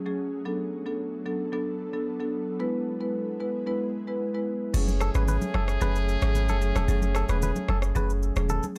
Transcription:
0.00 2.56 F#3 medium
0.00 0.41 A3 medium
0.00 0.41 C#4 medium
0.00 0.41 G#4 medium
0.06 0.24 F#3 medium
0.06 0.24 A3 medium
0.06 0.24 C#4 medium
0.06 0.24 G#4 medium
0.45 0.64 F#3 medium
0.45 4.70 B3 medium
0.45 0.64 B3 medium
0.45 2.58 D4 medium
0.45 0.64 D4 medium
0.45 2.58 A4 medium
0.45 0.65 A4 medium
0.86 1.23 F#3 medium
0.86 1.23 B3 medium
0.86 1.23 D4 medium
0.86 1.23 A4 medium
1.26 1.50 F#3 medium
1.26 1.51 B3 medium
1.26 1.51 D4 medium
1.26 1.51 A4 medium
1.52 1.90 F#3 medium
1.52 1.90 B3 medium
1.52 1.90 D4 medium
1.52 1.90 A4 loud
1.93 2.11 F#3 medium
1.93 2.12 B3 medium
1.93 2.12 D4 medium
1.93 2.12 A4 medium
2.20 2.38 F#3 medium
2.20 2.38 B3 medium
2.20 2.38 D4 medium
2.20 2.39 A4 medium
2.60 2.79 G#3 medium
2.60 4.72 G#3 medium
2.60 2.79 B3 medium
2.60 4.72 E4 medium
2.60 2.79 E4 medium
2.60 4.72 B4 medium
2.60 2.79 B4 loud
3.00 3.37 G#3 medium
3.00 3.37 B3 medium
3.00 3.37 E4 medium
3.00 3.37 B4 medium
3.40 3.65 G#3 medium
3.40 3.65 B3 medium
3.40 3.65 E4 medium
3.40 3.65 B4 medium
3.66 4.04 G#3 medium
3.66 4.04 B3 medium
3.66 4.04 E4 medium
3.66 4.04 B4 loud
4.07 4.26 G#3 medium
4.07 4.26 B3 medium
4.07 4.26 E4 medium
4.07 4.26 B4 medium
4.34 4.53 G#3 medium
4.34 4.53 B3 medium
4.34 4.53 E4 medium
4.34 4.53 B4 medium
4.74 5.10 F#1 loud
4.74 4.93 F#3 medium
4.74 4.93 A3 medium
4.74 8.72 A3 medium
4.74 8.72 C#4 medium
4.74 4.93 C#4 medium
4.74 8.72 G#4 medium
4.74 4.93 G#4 loud
4.74 crash medium
4.74 low conga medium
4.74 shaker medium
4.87 high conga medium
4.87 shaker medium
5.00 5.09 A4 medium
5.00 cross-stick medium
5.00 shaker medium
5.14 5.38 G#1 medium
5.14 5.33 F#3 medium
5.14 5.33 A3 medium
5.14 5.33 C#4 medium
5.14 5.33 G#4 medium
5.14 5.23 B4 medium
5.14 cross-stick medium
5.14 shaker medium
5.28 5.36 B4 medium
5.28 low conga medium
5.28 shaker medium
5.42 high conga medium
5.42 shaker soft
5.54 5.78 F#1 medium
5.54 5.63 A4 medium
5.54 cross-stick medium
5.54 high conga medium
5.68 cross-stick medium
5.68 shaker soft
5.81 6.17 F#1 loud
5.81 6.18 F#3 medium
5.81 6.19 A3 medium
5.81 6.19 C#4 medium
5.81 6.19 G#4 loud
5.81 5.97 B4 medium
5.81 low conga medium
5.81 shaker medium
5.96 shaker medium
6.09 shaker soft
6.22 6.50 G#1 medium
6.22 6.58 F#3 medium
6.22 6.58 A3 medium
6.22 6.58 C#4 medium
6.22 6.59 G#4 medium
6.22 cross-stick loud
6.22 shaker medium
6.35 low conga medium
6.35 shaker medium
6.49 6.72 F#1 medium
6.49 6.57 A4 medium
6.49 high conga medium
6.49 shaker medium
6.61 6.86 F#3 medium
6.61 6.86 A3 medium
6.61 6.86 C#4 medium
6.61 6.86 G#4 medium
6.61 shaker soft
6.75 6.87 E1 medium
6.75 6.83 A4 medium
6.75 cross-stick medium
6.75 high conga medium
6.75 shaker medium
6.88 7.24 F#1 loud
6.88 7.07 F#3 medium
6.88 7.07 A3 medium
6.88 7.07 C#4 medium
6.88 7.07 G#4 loud
6.88 low conga medium
6.88 shaker medium
7.02 high conga medium
7.02 shaker medium
7.15 7.24 A4 medium
7.15 cross-stick medium
7.15 shaker medium
7.29 7.52 E1 medium
7.29 7.47 F#3 medium
7.29 7.47 A3 medium
7.29 7.47 C#4 medium
7.29 7.47 G#4 medium
7.29 7.37 B4 medium
7.29 cross-stick medium
7.29 shaker medium
7.42 7.50 B4 medium
7.42 low conga medium
7.42 shaker medium
7.56 high conga medium
7.56 shaker soft
7.68 7.92 F#1 medium
7.68 7.77 A4 medium
7.68 cross-stick medium
7.68 high conga medium
7.82 cross-stick medium
7.82 shaker soft
7.95 8.31 F#1 loud
7.95 8.33 F#3 medium
7.95 8.33 A3 medium
7.95 8.33 C#4 medium
7.95 8.33 G#4 loud
7.95 8.11 B4 medium
7.95 low conga medium
7.95 shaker medium
8.10 shaker medium
8.23 shaker soft
8.36 8.60 E1 medium
8.36 8.73 F#3 medium
8.36 8.73 A3 medium
8.36 8.73 C#4 medium
8.36 8.73 G#4 medium
8.36 cross-stick loud
8.36 shaker medium
8.49 8.65 A4 medium
8.49 low conga medium
8.49 shaker medium
8.63 high conga medium
8.63 shaker medium

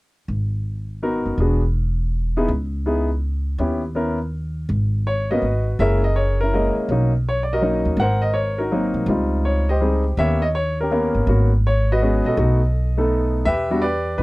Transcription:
0.28 1.22 G#1 medium
1.02 1.38 B3 soft
1.02 1.39 D#4 soft
1.02 1.38 F#4 medium
1.02 1.39 A#4 medium
1.25 1.37 F#1 medium
1.38 2.44 E1 medium
1.38 1.61 B3 soft
1.38 1.61 D4 soft
1.38 1.61 F#4 soft
1.38 1.61 G#4 medium
2.37 2.48 B3 medium
2.37 2.48 D#4 medium
2.37 2.48 E4 medium
2.37 2.48 G#4 medium
2.48 3.55 C#2 medium
2.86 3.07 B3 medium
2.86 3.07 D#4 soft
2.86 3.07 E4 soft
2.86 3.08 G#4 medium
3.58 4.65 D#2 medium
3.58 3.80 B3 soft
3.58 3.81 C#4 soft
3.58 3.81 E4 soft
3.58 3.81 G4 medium
3.95 4.17 B3 medium
3.95 4.17 C#4 soft
3.95 4.17 E4 soft
3.95 4.17 A#4 medium
4.69 5.38 G#1 medium
5.07 5.28 C#5 medium
5.31 5.42 A#3 medium
5.31 5.42 B3 soft
5.31 5.42 C#4 medium
5.31 5.76 F#4 medium
5.31 5.76 B4 medium
5.31 5.64 D#5 medium
5.42 5.76 G#1 medium
5.79 6.72 F#1 medium
5.79 6.01 G#3 medium
5.79 6.01 A#3 soft
5.79 6.01 C#4 medium
5.79 6.01 E4 medium
5.79 6.37 G#4 medium
5.79 6.36 A#4 medium
5.79 6.04 E5 loud
6.04 6.16 D#5 medium
6.16 6.38 C#5 medium
6.41 6.53 C#4 soft
6.41 6.87 E4 soft
6.41 6.74 A#4 medium
6.53 6.89 G#3 medium
6.53 6.89 A#3 medium
6.53 6.89 C#4 medium
6.53 6.90 D#5 medium
6.76 muted upright bass stroke soft
6.89 7.82 B1 medium
6.89 7.11 F#3 medium
6.89 7.11 A#3 soft
6.89 7.11 C#4 soft
6.89 7.11 D#4 medium
7.29 7.41 C#5 medium
7.43 7.51 D5 medium
7.53 7.97 F#4 medium
7.53 7.97 A#4 medium
7.53 7.85 D#5 medium
7.61 7.98 F#3 medium
7.61 7.98 A#3 soft
7.61 7.99 C#4 medium
7.61 7.99 D#4 medium
7.85 7.96 D#2 medium
7.97 8.90 G#1 medium
7.97 8.21 F#5 medium
8.01 8.56 A#4 medium
8.01 8.56 C5 medium
8.22 8.34 D#5 medium
8.34 8.59 C#5 medium
8.58 8.71 D#4 soft
8.58 9.05 F#4 soft
8.58 8.93 A#4 medium
8.72 9.08 F#3 medium
8.72 9.08 A#3 medium
8.72 9.07 C4 soft
8.72 9.08 D#4 medium
8.94 9.06 C2 medium
9.06 10.13 C#2 medium
9.06 9.64 G3 medium
9.06 9.64 C4 soft
9.06 9.64 D#4 soft
9.06 9.64 F4 medium
9.45 9.67 C#5 medium
9.69 10.15 G4 medium
9.69 10.15 C5 medium
9.69 10.03 D#5 medium
9.81 10.02 G3 medium
9.81 10.03 C4 soft
9.81 10.03 D#4 soft
9.81 10.03 G#4 medium
10.17 11.10 D#2 medium
10.17 10.40 A#3 medium
10.17 10.40 B3 medium
10.17 10.40 C#4 medium
10.17 10.40 G4 medium
10.17 10.53 C#5 medium
10.17 10.43 E5 loud
10.42 10.47 D#5 medium
10.55 10.77 C#5 medium
10.81 10.91 C#4 soft
10.81 11.27 G4 soft
10.81 10.91 A#4 medium
10.91 11.26 A#3 medium
10.91 11.26 B3 medium
10.91 11.27 C#4 medium
10.91 11.28 A#4 medium
11.15 11.26 G1 medium
11.27 12.20 G#1 medium
11.27 11.49 A#3 medium
11.27 11.49 B3 medium
11.27 11.50 C#4 soft
11.27 11.50 F#4 medium
11.67 11.90 C#5 medium
11.92 12.27 F#4 medium
11.92 12.36 B4 medium
11.92 12.24 D#5 medium
12.02 12.38 G#3 medium
12.02 12.36 B3 medium
12.02 12.38 C#4 medium
12.02 12.38 G#4 medium
12.24 12.36 A#1 medium
12.24 12.37 F#4 medium
12.24 12.97 A4 medium
12.24 13.31 D#5 medium
12.37 13.43 B1 medium
12.37 12.59 A3 soft
12.37 12.59 B3 medium
12.37 12.59 D#4 medium
12.37 12.59 F#4 medium
12.98 13.44 A3 medium
12.98 13.44 B3 medium
12.98 13.44 D#4 medium
12.98 13.45 A4 medium
13.45 14.15 E2 medium
13.45 13.83 G4 medium
13.45 13.82 B4 medium
13.45 13.80 E5 loud
13.70 13.82 G3 medium
13.70 13.82 B3 medium
13.70 13.82 D4 medium
13.70 13.82 F#4 medium
13.82 14.19 G4 medium
13.82 14.16 B4 medium
13.82 14.20 D5 medium
14.18 14.23 A2 medium
14.18 14.23 B4 medium

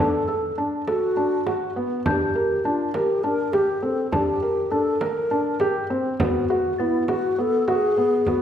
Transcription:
0.00 0.22 D4 medium
0.00 0.54 A4 medium
0.00 0.31 D6 medium
0.00 0.31 F#6 medium
0.28 0.51 A4 medium
0.28 0.90 E6 medium
0.58 0.81 D4 medium
0.88 1.72 F#4 medium
0.88 1.10 A4 medium
0.88 frame drum soft
1.17 1.40 D4 medium
1.46 1.69 F#4 medium
1.46 frame drum soft
1.76 1.99 B3 medium
2.06 2.28 D4 medium
2.06 2.67 G4 medium
2.06 2.68 G6 medium
2.06 frame drum medium
2.35 2.58 A#4 medium
2.65 2.88 D4 medium
2.65 2.94 F4 medium
2.65 frame drum soft
2.94 3.25 G4 medium
2.94 3.17 A#4 medium
2.94 frame drum soft
3.23 3.47 D4 medium
3.23 3.54 A#4 medium
3.52 3.84 G4 medium
3.52 3.77 G4 medium
3.52 frame drum soft
3.82 4.06 C4 medium
3.82 4.11 A4 medium
4.11 4.35 D4 medium
4.11 4.72 G4 medium
4.11 frame drum medium
4.42 4.65 A#4 medium
4.71 4.94 D4 medium
4.71 5.02 A4 medium
4.71 frame drum soft
5.01 5.90 A#4 medium
5.01 5.24 A#4 medium
5.01 frame drum soft
5.31 5.54 D4 medium
5.60 5.83 G4 medium
5.60 frame drum soft
5.90 6.13 C4 medium
6.20 6.43 B3 medium
6.20 6.82 F#4 medium
6.20 frame drum medium
6.50 6.73 F#4 medium
6.78 7.02 B3 medium
6.78 7.09 E4 medium
6.78 7.41 A6 medium
6.78 frame drum soft
7.08 7.31 F#4 medium
7.08 7.42 F#4 medium
7.08 frame drum soft
7.39 7.61 B3 medium
7.39 7.71 A4 medium
7.68 7.91 F#4 medium
7.68 8.29 G#4 medium
7.68 frame drum soft
7.98 8.20 B3 medium
8.26 8.42 B3 medium
8.26 8.42 F#4 medium
8.26 frame drum soft

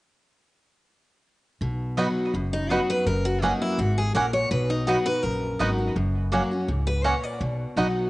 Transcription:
1.61 2.05 B1 medium
1.61 2.31 B2 medium
1.97 2.32 F#3 medium
1.97 2.07 B3 medium
1.97 2.32 B3 medium
1.97 2.06 B3 medium
1.97 2.33 D#4 medium
1.97 2.06 D#4 medium
1.97 2.07 F#4 loud
1.97 2.07 F#4 medium
1.97 2.33 F#4 medium
1.97 2.07 D#5 medium
1.97 2.08 B5 loud
2.34 2.77 F#1 medium
2.34 3.03 F#2 medium
2.53 2.71 D#4 medium
2.70 3.05 F#3 medium
2.70 2.80 B3 medium
2.70 3.05 B3 medium
2.70 2.79 B3 medium
2.70 3.05 D#4 medium
2.70 2.79 D#4 medium
2.70 2.89 F#4 medium
2.70 2.80 F#4 medium
2.70 2.79 F#4 medium
2.70 3.05 F#4 medium
2.70 2.80 D#5 medium
2.70 2.80 B5 medium
2.90 3.06 B4 loud
3.06 3.50 F#1 medium
3.06 3.75 F#2 medium
3.06 3.25 A#4 medium
3.25 3.42 F#4 medium
3.42 3.77 F#3 medium
3.42 3.52 A#3 medium
3.42 3.77 A#3 medium
3.42 3.51 C#4 medium
3.42 3.78 C#4 medium
3.42 3.61 D#4 medium
3.42 3.52 F#4 medium
3.42 3.46 F#4 medium
3.42 3.78 F#4 medium
3.42 3.52 C#5 loud
3.42 3.53 F#5 medium
3.62 3.78 E4 medium
3.78 4.09 G#1 medium
3.78 4.14 G#2 medium
3.78 3.97 F#4 medium
3.98 4.14 G#4 medium
4.15 4.46 A#1 medium
4.15 4.50 A#2 medium
4.15 4.25 A#3 medium
4.15 4.24 C#4 medium
4.15 4.25 F#4 medium
4.15 4.19 F#4 medium
4.15 4.33 A#4 medium
4.15 4.25 C#5 medium
4.15 4.25 F#5 loud
4.33 4.50 C#5 loud
4.51 4.95 B1 loud
4.51 5.20 B2 medium
4.51 4.70 B4 medium
4.70 4.87 D#4 medium
4.87 5.06 F#3 medium
4.87 4.97 B3 medium
4.87 5.06 B3 medium
4.87 4.96 B3 medium
4.87 5.06 D#4 medium
4.87 4.96 D#4 medium
4.87 5.06 F#4 medium
4.87 4.97 F#4 loud
4.87 5.05 F#4 medium
4.87 4.97 F#4 medium
4.87 4.97 D#5 loud
4.87 4.98 B5 loud
5.06 5.24 D#4 soft
5.06 5.23 F#4 medium
5.06 5.23 B4 loud
5.23 5.54 A#1 medium
5.23 5.92 F#2 medium
5.23 5.96 A#4 medium
5.59 5.91 G#1 medium
5.59 5.78 F#3 medium
5.59 5.69 B3 medium
5.59 5.78 B3 medium
5.59 5.69 B3 medium
5.59 5.79 D#4 medium
5.59 5.69 D#4 medium
5.59 5.69 F#4 medium
5.59 5.77 F#4 medium
5.59 5.70 D#5 medium
5.59 5.70 B5 medium
5.78 5.96 D#4 soft
5.78 5.95 F#4 medium
5.96 6.39 F#1 medium
5.96 6.65 F#2 medium
6.32 6.50 F#3 medium
6.32 6.42 A#3 medium
6.32 6.51 A#3 medium
6.32 6.51 C#4 medium
6.32 6.41 C#4 medium
6.32 6.42 F#4 medium
6.32 6.50 F#4 medium
6.32 6.36 F#4 medium
6.32 6.42 C#5 medium
6.32 6.42 F#5 medium
6.51 6.69 C#4 medium
6.51 6.68 F#4 medium
6.68 7.12 C#2 medium
6.68 7.03 G#2 medium
6.87 7.04 B4 medium
7.04 7.39 A#2 medium
7.04 7.14 A#3 medium
7.04 7.13 C#4 medium
7.04 7.14 F#4 medium
7.04 7.07 F#4 medium
7.04 7.24 C#5 medium
7.04 7.15 C#5 medium
7.04 7.15 F#5 medium
7.24 7.40 D5 medium
7.41 7.62 B1 medium
7.41 8.10 B2 medium
7.76 8.08 B1 medium
7.76 8.10 F#3 medium
7.76 7.87 B3 medium
7.76 7.86 B3 medium
7.76 8.10 B3 medium
7.76 7.86 D#4 medium
7.76 8.10 D#4 medium
7.76 7.87 F#4 medium
7.76 7.86 F#4 medium
7.76 8.10 F#4 medium
7.76 7.87 D#5 medium
7.76 7.87 B5 medium

